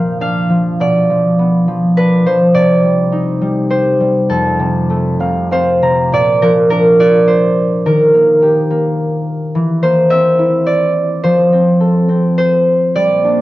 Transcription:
0.00 0.85 A#2 medium
0.00 0.48 F3 soft
0.00 0.86 A#3 soft
0.00 0.21 F5 medium
0.00 0.85 G5 medium
0.21 1.97 D4 soft
0.21 1.88 F5 medium
0.50 0.85 F3 soft
0.80 2.60 B2 medium
0.80 2.54 D5 medium
1.10 1.66 F3 soft
1.39 2.60 B3 soft
1.68 2.25 F3 soft
1.97 3.18 D4 soft
1.97 2.33 B4 medium
2.26 2.60 F3 medium
2.26 3.70 C5 medium
2.54 4.35 C3 medium
2.54 4.39 D5 medium
2.83 3.40 G3 soft
3.12 5.83 D#4 medium
3.42 3.99 G3 soft
3.70 6.06 G4 soft
3.70 5.52 C5 medium
4.01 4.35 G3 medium
4.29 6.17 F2 medium
4.29 6.48 A4 medium
4.59 5.19 C3 soft
4.90 6.19 A3 medium
5.20 5.82 C3 soft
5.20 5.51 F5 medium
5.51 8.51 C4 soft
5.51 7.27 C5 medium
5.51 7.18 F5 medium
5.83 6.17 C3 soft
5.83 7.23 A#5 medium
6.12 7.91 A#2 medium
6.12 6.99 D5 medium
6.42 7.91 F3 soft
6.42 6.50 A#4 medium
6.70 7.92 D4 medium
6.70 7.86 A#4 medium
7.00 9.52 F4 soft
7.00 8.84 D5 loud
7.27 9.25 C5 medium
7.86 9.60 D#3 medium
7.86 9.98 A#4 medium
8.14 8.70 A#3 medium
8.42 10.77 G4 medium
8.70 9.83 A#3 medium
9.55 11.29 E3 medium
9.83 11.87 A#3 medium
9.83 11.23 C5 medium
10.10 11.52 C4 medium
10.10 11.83 E5 medium
10.39 11.30 E4 medium
10.66 12.51 D5 medium
11.24 13.01 F3 medium
11.24 12.38 C5 medium
11.53 12.09 C4 soft
11.81 13.41 A4 soft
12.09 13.41 C4 soft
12.38 13.41 C5 medium
12.95 13.41 A#2 medium
12.95 13.41 G3 medium
12.95 13.41 A#3 medium
12.95 13.41 D5 medium
13.25 13.41 D4 soft

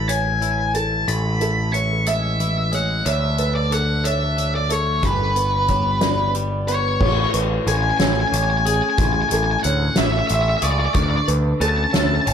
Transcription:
0.00 1.04 A1 soft
0.00 0.75 A2 medium
0.00 0.40 E3 soft
0.08 0.75 C#5 medium
0.08 0.75 G#5 medium
0.08 closed hi-hat medium
0.42 1.40 E3 soft
0.42 closed hi-hat soft
0.74 1.39 A4 medium
0.74 1.09 A5 medium
0.74 closed hi-hat soft
1.08 3.02 A1 medium
1.08 2.73 A2 medium
1.08 1.73 B5 medium
1.08 closed hi-hat medium
1.41 1.72 E3 soft
1.41 1.74 A4 medium
1.41 closed hi-hat soft
1.73 2.39 E3 soft
1.73 2.07 C#5 medium
1.73 2.07 C#6 medium
1.73 closed hi-hat soft
2.06 2.71 G#3 soft
2.06 2.75 E5 medium
2.06 2.73 E5 medium
2.06 closed hi-hat medium
2.40 3.05 E3 medium
2.40 closed hi-hat soft
2.72 3.05 G#3 medium
2.72 3.05 C#5 medium
2.72 3.08 F#5 medium
2.72 closed hi-hat soft
3.05 5.00 D2 medium
3.05 3.69 D3 medium
3.05 3.39 C#5 medium
3.05 3.55 E5 medium
3.05 closed hi-hat medium
3.38 4.03 A3 soft
3.38 3.72 B4 medium
3.38 closed hi-hat soft
3.55 3.72 D5 medium
3.71 4.35 D3 soft
3.71 4.05 A4 soft
3.71 4.06 F#5 medium
3.71 closed hi-hat soft
4.04 4.68 A3 medium
4.04 4.71 C#5 medium
4.04 4.55 E5 medium
4.04 closed hi-hat medium
4.37 5.02 D3 medium
4.37 closed hi-hat medium
4.55 4.72 D5 medium
4.69 5.03 A3 medium
4.69 5.36 A4 medium
4.69 5.05 C#5 medium
4.69 closed hi-hat medium
5.03 6.97 G1 medium
5.03 5.68 G3 medium
5.03 6.32 B4 medium
5.03 kick medium
5.03 closed hi-hat medium
5.36 6.01 B3 medium
5.36 5.69 B4 medium
5.36 closed hi-hat medium
5.68 6.34 G3 soft
5.68 6.02 C#5 soft
5.68 kick medium
5.68 closed hi-hat soft
6.01 6.67 B3 medium
6.01 6.67 D5 medium
6.01 snare medium
6.01 closed hi-hat medium
6.35 7.01 G3 medium
6.35 closed hi-hat soft
6.68 7.01 B3 medium
6.68 7.01 B4 medium
6.68 7.30 C#5 medium
6.68 closed hi-hat medium
7.01 7.25 A1 medium
7.01 8.65 A2 medium
7.01 7.34 C#5 medium
7.01 kick loud
7.01 crash medium
7.33 7.58 A1 medium
7.33 7.67 B4 medium
7.33 closed hi-hat medium
7.67 7.91 A1 medium
7.67 8.32 C#4 medium
7.67 8.00 A4 medium
7.67 7.75 G#5 loud
7.67 closed hi-hat medium
7.75 7.82 G#5 medium
7.82 7.89 G#5 medium
7.91 7.97 G#5 medium
7.98 8.24 A1 medium
7.98 9.96 A3 medium
7.98 8.65 C#5 medium
7.98 8.05 G#5 medium
7.98 snare loud
7.98 closed hi-hat medium
8.05 8.13 G#5 medium
8.13 8.20 G#5 medium
8.20 8.27 G#5 medium
8.28 8.35 G#5 medium
8.32 8.80 A1 medium
8.32 10.98 C#4 medium
8.32 8.43 G#5 medium
8.32 closed hi-hat medium
8.44 8.50 G#5 medium
8.50 8.57 G#5 medium
8.57 8.65 G#5 medium
8.65 10.30 G#4 medium
8.65 9.31 G#4 medium
8.65 8.74 G#5 medium
8.65 closed hi-hat medium
8.74 8.82 G#5 medium
8.82 8.89 G#5 medium
8.90 8.98 G#5 medium
8.98 9.22 A1 medium
8.98 10.63 A2 medium
8.98 9.05 G#5 medium
8.98 kick loud
8.98 closed hi-hat medium
9.05 9.12 G#5 medium
9.13 9.21 G#5 medium
9.22 9.29 G#5 medium
9.29 9.56 A1 medium
9.29 9.65 A4 medium
9.29 9.36 G#5 medium
9.29 closed hi-hat medium
9.36 9.44 G#5 medium
9.44 9.51 G#5 medium
9.51 9.59 G#5 medium
9.60 9.97 F#5 medium
9.60 9.63 G#5 medium
9.64 9.89 D2 medium
9.64 9.97 C#5 medium
9.64 closed hi-hat medium
9.96 10.21 A1 medium
9.96 10.95 A3 medium
9.96 10.04 E5 medium
9.96 10.63 E5 medium
9.96 snare loud
9.96 closed hi-hat medium
10.05 10.12 E5 medium
10.12 10.18 E5 medium
10.19 10.26 E5 medium
10.27 10.54 A1 medium
10.27 10.34 E5 medium
10.27 closed hi-hat medium
10.34 10.42 E5 medium
10.42 10.49 E5 medium
10.49 10.57 E5 medium
10.58 10.63 E5 medium
10.58 closed hi-hat medium
10.62 10.86 C#2 medium
10.62 10.95 G#4 medium
10.62 10.71 D5 medium
10.62 10.93 C#6 medium
10.71 10.79 D5 medium
10.80 10.85 D5 medium
10.86 10.93 D5 medium
10.94 11.19 D2 medium
10.94 12.33 D3 medium
10.94 11.02 D5 medium
10.94 11.28 C#6 medium
10.94 kick loud
10.94 closed hi-hat medium
11.03 11.09 D5 medium
11.10 11.17 D5 medium
11.17 11.25 D5 soft
11.27 11.52 D2 medium
11.27 11.61 B4 medium
11.27 closed hi-hat medium
11.60 11.85 D2 medium
11.60 12.25 C#4 medium
11.60 11.94 A4 medium
11.60 11.69 A5 medium
11.60 closed hi-hat medium
11.69 11.77 A5 medium
11.77 11.83 A5 medium
11.84 11.91 A5 medium
11.91 12.18 D2 medium
11.91 12.33 A3 medium
11.91 12.33 C#5 medium
11.91 11.99 A5 medium
11.91 snare loud
11.91 closed hi-hat medium
12.00 12.06 A5 medium
12.07 12.14 A5 medium
12.15 12.21 A5 medium
12.21 12.28 A5 medium
12.26 12.33 G#1 medium
12.26 12.33 C#4 medium
12.26 12.33 A5 medium
12.26 closed hi-hat medium

